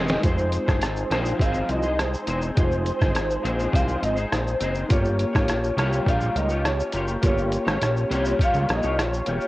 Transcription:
Already playing: E1 G#3 C4 D#4 F4 G#4 C5 D#5
0.08 snare, shaker
0.20 F1 G#3 C4 D#4 F4 C5, kick, closed hi-hat, shaker
0.25 D#4 G#4 C5
0.38 shaker
0.52 closed hi-hat, shaker
0.66 G1 D#4 G#4 C5, kick, cross-stick, shaker
0.81 G#1, cross-stick, closed hi-hat, shaker
0.96 shaker
1.10 A#1 F3 C4 D#4 G#4 C5, cross-stick, closed hi-hat, shaker
1.25 shaker
1.39 G#1 F3 C4 D#4 G#4 C5 F5, kick, closed hi-hat, shaker
1.54 shaker
1.69 C2 D#5, closed hi-hat, shaker
1.82 G#4 C5, shaker
1.87 D#4
1.99 C5, cross-stick, closed hi-hat, shaker
2.14 shaker
2.27 E1 C4 D#4 G#4 C5, closed hi-hat, shaker
2.42 shaker
2.55 F1 G#3 C4 D#4 F4 G#4 C5, kick, closed hi-hat, shaker
2.59 C5
2.71 shaker
2.86 closed hi-hat, shaker
2.99 G1 D#4 G#4 C5, kick, cross-stick, shaker
3.14 G#1, cross-stick, closed hi-hat, shaker
3.30 shaker
3.43 A#1 F3 C4 D#4 G#4 C5, closed hi-hat, shaker
3.59 shaker
3.72 C2 F3 C4 D#4 G#4 C5 F5, kick, closed hi-hat, shaker
3.88 shaker
4.02 G#1 D#5, closed hi-hat, shaker
4.15 D#4 G#4 C5, shaker
4.32 A#1 C5, cross-stick, closed hi-hat, shaker
4.47 shaker
4.60 F#1 C4 D#4 G#4 C5, closed hi-hat, shaker
4.75 shaker
4.88 G1 A#3 F4 G4 C#5, kick, closed hi-hat, shaker
4.93 C#5
5.05 shaker
5.19 closed hi-hat, shaker
5.33 G#1 F4 G4 C#5, kick, cross-stick, shaker
5.48 A#1, cross-stick, closed hi-hat, shaker
5.64 shaker
5.77 C2 G3 A#3 F4 G4 C#5, cross-stick, closed hi-hat, shaker
5.93 shaker
6.06 A#1 G3 A#3 F4 G4 C#5 F5, kick, closed hi-hat, shaker
6.21 shaker
6.35 C#2 D#5, closed hi-hat, shaker
6.49 G4 C#5, shaker
6.53 F4
6.65 C#5, cross-stick, closed hi-hat, shaker
6.80 shaker
6.92 F#1 A#3 F4 G4 C#5, closed hi-hat, shaker
7.08 shaker
7.21 G1 A#3 F4 G4 C#5, kick, closed hi-hat, shaker
7.26 C#5
7.38 shaker
7.52 closed hi-hat, shaker
7.65 G#1 F4 G4 C#5, cross-stick, shaker
7.82 A#1, cross-stick, closed hi-hat, shaker
7.96 shaker
8.10 C2 G3 A#3 F4 G4 C#5, closed hi-hat, shaker
8.25 shaker
8.39 G3 A#3 F4 G4 C#5 F5, kick, closed hi-hat, shaker
8.54 C#2, shaker
8.69 A#1 D#5, cross-stick, closed hi-hat, shaker
8.83 C2 F4 G4 C#5, shaker
8.98 A#1 C#5, cross-stick, closed hi-hat, shaker
9.14 shaker
9.26 E1 A#3 F4 G4 C#5, closed hi-hat, shaker
9.41 shaker

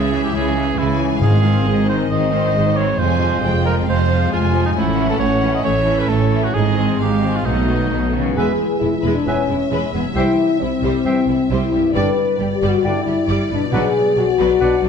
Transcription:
Already playing: C#2 C#3 E3 G#3 C#4 E4 G#4 C#5 E5
0.11 E3 C#4 G#4 C#5
0.24 G4
0.33 C#2 C#3 G#3 C#4 E4 G#4
0.55 E3 G#3 C#4 G#4
0.77 C#2 C#3 G#3 E4 G#5
0.99 E3 C#4 G#4 C#5
1.21 G#1 G#2 D#3 G#3 C4 D#4 G#4 F5
1.43 D#3 G#3 C4 D#4
1.65 G#1 G#2 G#3 C4 D#4 D#5
1.87 D#3 C4 D#4 C5
2.09 G#1 G#2 D#3 G#3 C4 D#4 C5 D#5
2.31 D#3 G#3 C4 D#4
2.54 G#1 G#2 G#3 C4 D#4
2.75 D#3 C4 D#4 C5 C#5
2.97 F1 F2 G#3 C4 F4 C5 G#5
3.19 F3 G#3 C4 F4
3.42 F1 F2 G#3 C4 F4 G5
3.64 F3 C4 F4 A#4 C5
3.86 F1 F2 C3 G#3 C4 F4 C5 F5
4.08 F3 G#3 C4 F4
4.30 F1 F2 G#3 C4 F4 G#5
4.53 F3 C4 F4 C5
4.66 D#4
4.76 A1 A2 A3 C#4 E4 F#5
4.97 E3 A3 C#4 E4
5.10 A4
5.19 A1 A2 A3 C#4 C#5
5.42 E3 A3 C#4 E4
5.54 D#5
5.64 A1 A2 E3 A3 C#4 C#5 E5
5.86 E3 A3 C#4 E4
5.99 B4
6.09 A1 A2 A3 C#4 A4 C#5
6.30 E3 A3 C#4 E4 C#5
6.44 F#4
6.52 G#1 G#2 G#3 C4 D#4 G#4 D#5
6.76 D#3 C4 G#4
6.98 G#1 G#2 G#3 D#4 G4 F5
7.21 D#3 C4 G#4 C5
7.36 F4
7.44 B1 B2 F#3 A3 B3 D#4 D#5
7.68 D#3 F#3 A3 B3 F#4
7.91 B1 B2 F#3 A3 B3 D#4
8.13 C#3 D#3 F#3 B3 F#4 B4
8.19 E3
8.23 G#3
8.28 B3
8.32 E3 B3 G#4 B4
8.36 E1 E2 G#3 B4 E5 G#5
8.80 E1 E2 G#3 E4
8.99 E4 B4
9.05 E1 E2 G#3
9.13 D4
9.26 E1 E2 E3 G#3 B3 C#4 G#4 B4 E5 G#5
9.49 E1 E2 G#3 E4
9.71 E1 E2 G#3 B4
9.93 E1 E2 G#3 B3 G#4
9.99 C3
10.03 G3
10.08 E4
10.12 C2 G3 E4 C5 E5 G5
10.17 E3 C4
10.60 C2 G3 C4 E4
10.82 C2 G3 C5
11.05 C2 E3 G3 C4 G4 C5 E5 G5
11.28 C2 G3 E4
11.50 C2 G3 E4 C5
11.72 C2 G3 G4
11.77 G2
11.81 B3
11.86 G4
11.91 D5
11.95 G1 G2 D3 G3 D4 B4 D5 G5
12.38 G1 G2 G3 G4
12.55 G4
12.62 G1 G2 G3 D5
12.69 F#4
12.83 G1 G2 D3 G3 D4 E4 B4 D5 G5
13.06 G1 G2 G3 G4
13.27 G1 G2 G3 D5
13.50 G1 G2 G3 D4 B4
13.54 B2
13.59 B3
13.63 F#4
13.68 B2 D5
13.72 B1 B2 F#3 D4 G#4 B4 D5 F#5
14.16 B1 B2 F#3 D4 F#4
14.38 B1 B2 F#3 B4
14.60 B1 B2 F#3 D4 F#4 B4 D5 F#5
14.82 B1 B2 F#3 D4

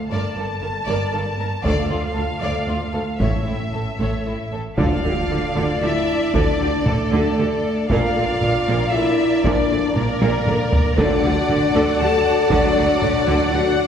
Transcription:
0.09 G1 G2 A#3 A4 A#4 D5 A5
0.35 G1 G2 A4 A#4
0.61 G1 G2 A#4
0.86 G1 G2 A#4 D5
1.12 G1 G2 A4 A#4
1.37 G1 G2 A#4
1.63 D2 D3 A3 F4 A4 D5 F5, taiko
1.89 D2 F4 A4
2.15 D2 A4
2.40 D2 A4 D5
2.67 D2 F4 A4
2.93 D2 A4
3.19 A1 A2 C#4 E4 A4 C#5 E5, taiko
3.46 A1 A2 E4 A4
3.73 A1 A2 A4
3.99 A1 A2 A4 C#5, taiko
4.26 A1 A2 E4 A4
4.52 A1 A2 A4
4.78 D2 D3 F3 D4 F4 A4 D5 F5, taiko, impact
5.04 D2 D3 G4
5.29 D2 D3 A4
5.55 D2 D3 A4
5.81 D2 D3 E4 G4 E5
6.33 D2 D3 F3 D4 A4 D5, taiko
6.59 D2 D3 G4
6.85 D2 D3 A3 A4, taiko mid
7.11 D2 D3 A4
7.37 D2 D3 G4
7.89 A#1 A#2 F3 D4 F4 A#4 D5 F5, taiko
8.16 A#1 A#2 A4
8.42 A#1 A#2 A#4, taiko mid
8.67 A#1 A#2 A#4
8.92 A#1 A#2 E4 A4 E5
9.44 A#1 A#2 F3 D4 A#4 D5, taiko
9.70 A#1 A#2 A4
9.95 A#1 A#2 A#3 A#4, taiko mid
10.21 A#1 A#2 A#4, taiko high
10.46 A#1 A#2 A4, taiko mid
10.73 taiko low
10.97 D2 D3 F#3 D4 F#4 A4 D5 F#5, taiko
11.23 D2 D3 G4
11.48 D2 D3 A4, taiko mid
11.74 D2 D3 A4
11.99 D2 D3 G4 A4 A5
12.50 D2 D3 D4 A4 D5, taiko
12.76 D2 D3 G4
13.01 D2 D3 A4, taiko mid
13.27 D2 D3 A4
13.52 D2 D3 F#4 G4 F#5

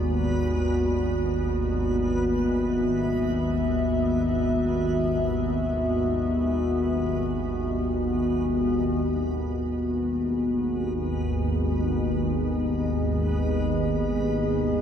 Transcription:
Already playing: G#1 D#2 B3 F#4 B4 D5
2.34 E5
9.03 G#1 D#2 B4
10.85 G#4
12.24 D#5

